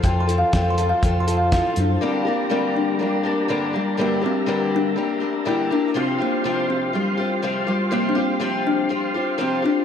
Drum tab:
HH |xxxxxxxx|--------|--------|--------|
SD |--o---o-|--------|--------|--------|
BD |o-o-o-o-|--------|--------|--------|

HH |--------|
SD |--------|
BD |--------|